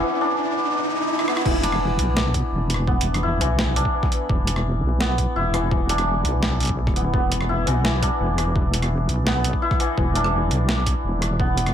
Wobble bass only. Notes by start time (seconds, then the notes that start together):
1.46 E1
1.99 B1
2.52 E1
3.41 B1
4.29 E1
4.83 B1
5.36 E1
6.25 B1
6.87 D1
7.14 E1
7.67 B1
8.20 E1
9.09 B1
9.98 E1
10.51 B1
11.04 E1